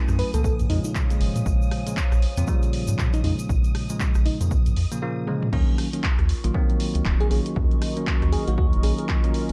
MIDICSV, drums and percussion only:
0, 0, Header, 1, 2, 480
1, 0, Start_track
1, 0, Tempo, 508475
1, 1378, Time_signature, 4, 2, 24, 8
1, 8990, End_track
2, 0, Start_track
2, 0, Title_t, "Drums"
2, 79, Note_on_c, 9, 82, 36
2, 81, Note_on_c, 9, 37, 65
2, 81, Note_on_c, 9, 42, 34
2, 174, Note_off_c, 9, 82, 0
2, 175, Note_off_c, 9, 37, 0
2, 175, Note_off_c, 9, 42, 0
2, 178, Note_on_c, 9, 46, 89
2, 273, Note_off_c, 9, 46, 0
2, 320, Note_on_c, 9, 82, 81
2, 321, Note_on_c, 9, 42, 61
2, 414, Note_off_c, 9, 82, 0
2, 415, Note_off_c, 9, 42, 0
2, 418, Note_on_c, 9, 36, 114
2, 420, Note_on_c, 9, 82, 60
2, 512, Note_off_c, 9, 36, 0
2, 515, Note_off_c, 9, 82, 0
2, 561, Note_on_c, 9, 42, 53
2, 561, Note_on_c, 9, 82, 36
2, 655, Note_off_c, 9, 42, 0
2, 655, Note_off_c, 9, 82, 0
2, 658, Note_on_c, 9, 46, 105
2, 753, Note_off_c, 9, 46, 0
2, 796, Note_on_c, 9, 82, 81
2, 801, Note_on_c, 9, 42, 64
2, 891, Note_off_c, 9, 82, 0
2, 895, Note_off_c, 9, 42, 0
2, 898, Note_on_c, 9, 36, 105
2, 898, Note_on_c, 9, 82, 61
2, 899, Note_on_c, 9, 39, 114
2, 992, Note_off_c, 9, 36, 0
2, 993, Note_off_c, 9, 39, 0
2, 993, Note_off_c, 9, 82, 0
2, 1041, Note_on_c, 9, 42, 52
2, 1044, Note_on_c, 9, 82, 37
2, 1136, Note_off_c, 9, 42, 0
2, 1138, Note_on_c, 9, 46, 93
2, 1139, Note_off_c, 9, 82, 0
2, 1233, Note_off_c, 9, 46, 0
2, 1281, Note_on_c, 9, 42, 64
2, 1283, Note_on_c, 9, 82, 84
2, 1375, Note_off_c, 9, 42, 0
2, 1377, Note_off_c, 9, 82, 0
2, 1378, Note_on_c, 9, 36, 114
2, 1380, Note_on_c, 9, 82, 64
2, 1472, Note_off_c, 9, 36, 0
2, 1475, Note_off_c, 9, 82, 0
2, 1527, Note_on_c, 9, 82, 36
2, 1618, Note_on_c, 9, 37, 82
2, 1618, Note_on_c, 9, 46, 99
2, 1622, Note_off_c, 9, 82, 0
2, 1713, Note_off_c, 9, 37, 0
2, 1713, Note_off_c, 9, 46, 0
2, 1761, Note_on_c, 9, 42, 71
2, 1768, Note_on_c, 9, 82, 65
2, 1855, Note_off_c, 9, 42, 0
2, 1858, Note_on_c, 9, 36, 104
2, 1859, Note_on_c, 9, 39, 119
2, 1862, Note_off_c, 9, 82, 0
2, 1862, Note_on_c, 9, 82, 59
2, 1952, Note_off_c, 9, 36, 0
2, 1954, Note_off_c, 9, 39, 0
2, 1956, Note_off_c, 9, 82, 0
2, 2001, Note_on_c, 9, 37, 64
2, 2001, Note_on_c, 9, 42, 35
2, 2003, Note_on_c, 9, 82, 36
2, 2096, Note_off_c, 9, 37, 0
2, 2096, Note_off_c, 9, 42, 0
2, 2098, Note_off_c, 9, 82, 0
2, 2099, Note_on_c, 9, 46, 87
2, 2193, Note_off_c, 9, 46, 0
2, 2239, Note_on_c, 9, 82, 68
2, 2241, Note_on_c, 9, 42, 64
2, 2334, Note_off_c, 9, 82, 0
2, 2334, Note_on_c, 9, 82, 64
2, 2335, Note_off_c, 9, 42, 0
2, 2338, Note_on_c, 9, 36, 111
2, 2429, Note_off_c, 9, 82, 0
2, 2432, Note_off_c, 9, 36, 0
2, 2477, Note_on_c, 9, 82, 34
2, 2481, Note_on_c, 9, 42, 56
2, 2572, Note_off_c, 9, 82, 0
2, 2575, Note_off_c, 9, 42, 0
2, 2578, Note_on_c, 9, 46, 106
2, 2673, Note_off_c, 9, 46, 0
2, 2714, Note_on_c, 9, 82, 80
2, 2721, Note_on_c, 9, 42, 65
2, 2809, Note_off_c, 9, 82, 0
2, 2816, Note_off_c, 9, 42, 0
2, 2818, Note_on_c, 9, 36, 102
2, 2819, Note_on_c, 9, 39, 112
2, 2825, Note_on_c, 9, 82, 60
2, 2913, Note_off_c, 9, 36, 0
2, 2913, Note_off_c, 9, 39, 0
2, 2919, Note_off_c, 9, 82, 0
2, 2958, Note_on_c, 9, 82, 35
2, 2961, Note_on_c, 9, 42, 54
2, 3052, Note_off_c, 9, 82, 0
2, 3055, Note_off_c, 9, 42, 0
2, 3058, Note_on_c, 9, 46, 87
2, 3153, Note_off_c, 9, 46, 0
2, 3200, Note_on_c, 9, 42, 66
2, 3201, Note_on_c, 9, 82, 78
2, 3295, Note_off_c, 9, 42, 0
2, 3295, Note_off_c, 9, 82, 0
2, 3298, Note_on_c, 9, 36, 119
2, 3300, Note_on_c, 9, 82, 58
2, 3393, Note_off_c, 9, 36, 0
2, 3395, Note_off_c, 9, 82, 0
2, 3438, Note_on_c, 9, 82, 39
2, 3440, Note_on_c, 9, 42, 38
2, 3532, Note_off_c, 9, 82, 0
2, 3535, Note_off_c, 9, 42, 0
2, 3538, Note_on_c, 9, 37, 75
2, 3538, Note_on_c, 9, 46, 96
2, 3633, Note_off_c, 9, 37, 0
2, 3633, Note_off_c, 9, 46, 0
2, 3676, Note_on_c, 9, 82, 73
2, 3680, Note_on_c, 9, 42, 68
2, 3770, Note_off_c, 9, 82, 0
2, 3775, Note_off_c, 9, 42, 0
2, 3777, Note_on_c, 9, 82, 62
2, 3778, Note_on_c, 9, 36, 102
2, 3779, Note_on_c, 9, 39, 115
2, 3872, Note_off_c, 9, 82, 0
2, 3873, Note_off_c, 9, 36, 0
2, 3873, Note_off_c, 9, 39, 0
2, 3914, Note_on_c, 9, 82, 36
2, 3921, Note_on_c, 9, 37, 64
2, 3921, Note_on_c, 9, 42, 37
2, 4008, Note_off_c, 9, 82, 0
2, 4015, Note_off_c, 9, 37, 0
2, 4015, Note_off_c, 9, 42, 0
2, 4018, Note_on_c, 9, 46, 88
2, 4112, Note_off_c, 9, 46, 0
2, 4161, Note_on_c, 9, 42, 69
2, 4162, Note_on_c, 9, 82, 69
2, 4255, Note_off_c, 9, 42, 0
2, 4256, Note_off_c, 9, 82, 0
2, 4258, Note_on_c, 9, 36, 111
2, 4258, Note_on_c, 9, 82, 57
2, 4352, Note_off_c, 9, 82, 0
2, 4353, Note_off_c, 9, 36, 0
2, 4400, Note_on_c, 9, 82, 35
2, 4401, Note_on_c, 9, 42, 57
2, 4494, Note_off_c, 9, 82, 0
2, 4495, Note_off_c, 9, 42, 0
2, 4498, Note_on_c, 9, 46, 103
2, 4593, Note_off_c, 9, 46, 0
2, 4641, Note_on_c, 9, 42, 70
2, 4644, Note_on_c, 9, 82, 76
2, 4736, Note_off_c, 9, 42, 0
2, 4738, Note_off_c, 9, 82, 0
2, 4979, Note_on_c, 9, 48, 61
2, 5073, Note_off_c, 9, 48, 0
2, 5121, Note_on_c, 9, 47, 70
2, 5216, Note_off_c, 9, 47, 0
2, 5218, Note_on_c, 9, 36, 123
2, 5219, Note_on_c, 9, 49, 103
2, 5313, Note_off_c, 9, 36, 0
2, 5313, Note_off_c, 9, 49, 0
2, 5459, Note_on_c, 9, 37, 77
2, 5459, Note_on_c, 9, 46, 102
2, 5553, Note_off_c, 9, 37, 0
2, 5553, Note_off_c, 9, 46, 0
2, 5601, Note_on_c, 9, 42, 73
2, 5695, Note_off_c, 9, 42, 0
2, 5698, Note_on_c, 9, 36, 121
2, 5699, Note_on_c, 9, 39, 127
2, 5793, Note_off_c, 9, 36, 0
2, 5793, Note_off_c, 9, 39, 0
2, 5841, Note_on_c, 9, 37, 62
2, 5841, Note_on_c, 9, 42, 36
2, 5936, Note_off_c, 9, 37, 0
2, 5936, Note_off_c, 9, 42, 0
2, 5939, Note_on_c, 9, 46, 94
2, 6033, Note_off_c, 9, 46, 0
2, 6081, Note_on_c, 9, 42, 68
2, 6175, Note_off_c, 9, 42, 0
2, 6178, Note_on_c, 9, 36, 118
2, 6272, Note_off_c, 9, 36, 0
2, 6321, Note_on_c, 9, 42, 58
2, 6416, Note_off_c, 9, 42, 0
2, 6418, Note_on_c, 9, 46, 108
2, 6513, Note_off_c, 9, 46, 0
2, 6561, Note_on_c, 9, 42, 69
2, 6655, Note_off_c, 9, 42, 0
2, 6658, Note_on_c, 9, 36, 125
2, 6659, Note_on_c, 9, 39, 124
2, 6753, Note_off_c, 9, 36, 0
2, 6753, Note_off_c, 9, 39, 0
2, 6801, Note_on_c, 9, 42, 54
2, 6895, Note_off_c, 9, 42, 0
2, 6899, Note_on_c, 9, 46, 97
2, 6993, Note_off_c, 9, 46, 0
2, 7041, Note_on_c, 9, 42, 69
2, 7135, Note_off_c, 9, 42, 0
2, 7138, Note_on_c, 9, 36, 127
2, 7233, Note_off_c, 9, 36, 0
2, 7281, Note_on_c, 9, 42, 36
2, 7376, Note_off_c, 9, 42, 0
2, 7379, Note_on_c, 9, 37, 74
2, 7379, Note_on_c, 9, 46, 110
2, 7473, Note_off_c, 9, 37, 0
2, 7473, Note_off_c, 9, 46, 0
2, 7521, Note_on_c, 9, 42, 68
2, 7616, Note_off_c, 9, 42, 0
2, 7618, Note_on_c, 9, 36, 127
2, 7619, Note_on_c, 9, 39, 127
2, 7713, Note_off_c, 9, 36, 0
2, 7714, Note_off_c, 9, 39, 0
2, 7761, Note_on_c, 9, 37, 64
2, 7761, Note_on_c, 9, 42, 37
2, 7856, Note_off_c, 9, 37, 0
2, 7856, Note_off_c, 9, 42, 0
2, 7859, Note_on_c, 9, 46, 99
2, 7953, Note_off_c, 9, 46, 0
2, 8001, Note_on_c, 9, 42, 68
2, 8095, Note_off_c, 9, 42, 0
2, 8098, Note_on_c, 9, 36, 122
2, 8193, Note_off_c, 9, 36, 0
2, 8241, Note_on_c, 9, 42, 56
2, 8336, Note_off_c, 9, 42, 0
2, 8338, Note_on_c, 9, 46, 119
2, 8433, Note_off_c, 9, 46, 0
2, 8481, Note_on_c, 9, 42, 68
2, 8575, Note_off_c, 9, 42, 0
2, 8578, Note_on_c, 9, 36, 127
2, 8579, Note_on_c, 9, 39, 123
2, 8673, Note_off_c, 9, 36, 0
2, 8673, Note_off_c, 9, 39, 0
2, 8721, Note_on_c, 9, 42, 54
2, 8816, Note_off_c, 9, 42, 0
2, 8819, Note_on_c, 9, 46, 96
2, 8913, Note_off_c, 9, 46, 0
2, 8961, Note_on_c, 9, 42, 70
2, 8990, Note_off_c, 9, 42, 0
2, 8990, End_track
0, 0, End_of_file